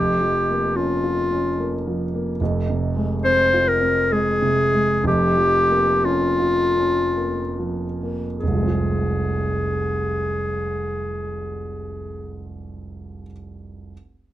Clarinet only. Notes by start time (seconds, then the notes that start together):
Already playing: G4
0.76 F4
3.24 C5
3.68 A#4
4.12 G#4
5.08 G4
6.05 F4
8.39 G#4